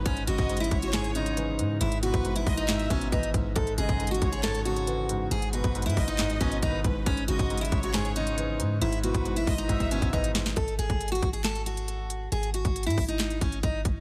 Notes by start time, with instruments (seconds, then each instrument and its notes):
0.06 808-style bass G#1, felt piano G#2, steel-string acoustic guitar C#4, kick, closed hi-hat
0.17 closed hi-hat
0.27 808-style bass G#1, felt piano C#3, steel-string acoustic guitar F#4, violin section D#5, closed hi-hat
0.38 808-style bass G#1, kick, closed hi-hat
0.49 felt piano G#2, closed hi-hat
0.57 steel-string acoustic guitar E4, closed hi-hat
0.64 closed hi-hat
0.71 808-style bass G#1, violin section C#5, kick, closed hi-hat
0.82 steel-string acoustic guitar F#4, closed hi-hat
0.93 felt piano G#2, steel-string acoustic guitar G#4, snare, clap, closed hi-hat
1.04 closed hi-hat
1.15 felt piano C#3, steel-string acoustic guitar D#4, closed hi-hat
1.26 closed hi-hat
1.37 felt piano E3, closed hi-hat
1.59 felt piano G#2, 808-style bass G#2, closed hi-hat
1.81 808-style bass G#1, felt piano G#2, steel-string acoustic guitar E4, closed hi-hat
1.92 closed hi-hat
2.03 felt piano B2, steel-string acoustic guitar F#4, violin section B4, closed hi-hat
2.14 808-style bass G#1, kick, closed hi-hat
2.25 felt piano G#2, closed hi-hat
2.36 steel-string acoustic guitar E4, closed hi-hat
2.47 808-style bass G#1, violin section D#5, kick, open hi-hat
2.57 steel-string acoustic guitar D#4, closed hi-hat
2.68 felt piano G#2, violin section E5, snare, clap, closed hi-hat
2.79 closed hi-hat
2.90 808-style bass G#1, felt piano B2, steel-string acoustic guitar C#4, kick, closed hi-hat
3.01 closed hi-hat
3.12 808-style bass G#1, felt piano E3, steel-string acoustic guitar D#4, kick, closed hi-hat
3.23 closed hi-hat
3.34 808-style bass G#1, felt piano G#2, kick, closed hi-hat
3.56 808-style bass G#1, felt piano G#2, steel-string acoustic guitar A4, kick, closed hi-hat
3.67 closed hi-hat
3.78 808-style bass G#1, felt piano C#3, steel-string acoustic guitar G#4, violin section D#5, closed hi-hat
3.89 808-style bass G#1, kick, closed hi-hat
4.00 felt piano G#2, closed hi-hat
4.07 steel-string acoustic guitar F#4, closed hi-hat
4.14 closed hi-hat
4.22 808-style bass G#1, violin section C#5, kick, closed hi-hat
4.32 steel-string acoustic guitar G#4, closed hi-hat
4.43 felt piano G#2, steel-string acoustic guitar A4, snare, clap, closed hi-hat
4.55 closed hi-hat
4.65 felt piano C#3, steel-string acoustic guitar F#4, closed hi-hat
4.76 closed hi-hat
4.87 felt piano E3, closed hi-hat
5.09 felt piano G#2, closed hi-hat
5.31 808-style bass G#1, felt piano G#2, steel-string acoustic guitar G#4, closed hi-hat
5.42 closed hi-hat
5.53 felt piano B2, steel-string acoustic guitar F#4, violin section B4, closed hi-hat
5.64 808-style bass G#1, kick, closed hi-hat
5.75 felt piano G#2, closed hi-hat
5.82 808-style bass G#2, steel-string acoustic guitar E4, closed hi-hat
5.90 closed hi-hat
5.97 808-style bass G#1, violin section D#5, kick, open hi-hat
6.08 steel-string acoustic guitar D#4, closed hi-hat
6.19 felt piano G#2, snare, clap, closed hi-hat
6.30 closed hi-hat
6.41 808-style bass G#1, felt piano B2, steel-string acoustic guitar C#4, kick, closed hi-hat
6.52 closed hi-hat
6.63 808-style bass G#1, felt piano D#3, steel-string acoustic guitar D#4, violin section B4, kick, closed hi-hat
6.84 808-style bass G#1, felt piano G#2, violin section B4, kick, closed hi-hat
7.06 808-style bass G#1, felt piano G#2, steel-string acoustic guitar C#4, kick, closed hi-hat
7.17 closed hi-hat
7.28 808-style bass G#1, felt piano C#3, steel-string acoustic guitar F#4, violin section D#5, closed hi-hat
7.39 808-style bass G#1, kick, closed hi-hat
7.50 felt piano G#2, closed hi-hat
7.58 steel-string acoustic guitar E4, closed hi-hat
7.65 closed hi-hat
7.72 808-style bass G#1, violin section C#5, kick, closed hi-hat
7.83 steel-string acoustic guitar F#4, closed hi-hat
7.94 felt piano G#2, steel-string acoustic guitar G#4, snare, clap, closed hi-hat
8.05 closed hi-hat
8.16 felt piano C#3, steel-string acoustic guitar D#4, closed hi-hat
8.27 closed hi-hat
8.38 felt piano E3, closed hi-hat
8.60 808-style bass G#2, felt piano G#2, closed hi-hat
8.81 808-style bass G#1, felt piano G#2, steel-string acoustic guitar E4, closed hi-hat
8.92 closed hi-hat
9.03 felt piano B2, steel-string acoustic guitar F#4, violin section B4, closed hi-hat
9.14 808-style bass G#1, kick, closed hi-hat
9.25 felt piano G#2, closed hi-hat
9.36 steel-string acoustic guitar E4, closed hi-hat
9.47 808-style bass G#1, violin section D#5, kick, open hi-hat
9.58 steel-string acoustic guitar D#4, closed hi-hat
9.69 808-style bass G#1, felt piano G#2, violin section E5, kick, closed hi-hat
9.80 kick, closed hi-hat
9.91 felt piano B2, steel-string acoustic guitar C#4, closed hi-hat
10.02 808-style bass G#1, kick, closed hi-hat
10.13 felt piano E3, steel-string acoustic guitar D#4, kick, closed hi-hat
10.24 closed hi-hat
10.35 felt piano G#2, snare, closed hi-hat
10.46 snare
10.56 808-style bass G#1, steel-string acoustic guitar A4, kick, closed hi-hat
10.68 closed hi-hat
10.79 808-style bass G#1, steel-string acoustic guitar G#4, closed hi-hat
10.90 808-style bass G#1, kick, closed hi-hat
11.01 closed hi-hat
11.08 steel-string acoustic guitar F#4, closed hi-hat
11.15 closed hi-hat
11.23 808-style bass G#1, kick, closed hi-hat
11.33 steel-string acoustic guitar G#4, closed hi-hat
11.44 steel-string acoustic guitar A4, snare, clap, closed hi-hat
11.55 closed hi-hat
11.66 steel-string acoustic guitar F#4, closed hi-hat
11.77 closed hi-hat
11.88 closed hi-hat
12.10 closed hi-hat
12.32 808-style bass G#1, steel-string acoustic guitar G#4, closed hi-hat
12.43 closed hi-hat
12.54 steel-string acoustic guitar F#4, closed hi-hat
12.65 808-style bass G#1, kick, closed hi-hat
12.76 closed hi-hat
12.83 808-style bass G#2, steel-string acoustic guitar E4, closed hi-hat
12.90 closed hi-hat
12.98 808-style bass G#1, kick, open hi-hat
13.08 steel-string acoustic guitar D#4, closed hi-hat
13.19 snare, clap, closed hi-hat
13.30 closed hi-hat
13.41 808-style bass G#1, steel-string acoustic guitar C#4, kick, closed hi-hat
13.52 closed hi-hat
13.63 808-style bass G#1, steel-string acoustic guitar D#4, kick, closed hi-hat
13.85 808-style bass G#1, kick, closed hi-hat